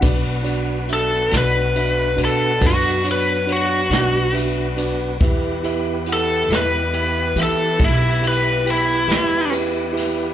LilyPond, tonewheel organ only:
\new Staff \with { instrumentName = "Tonewheel organ" } { \time 12/8 \key b \minor \tempo 4. = 46 <b d' fis' b'>1. | <b e' g' b'>1. | }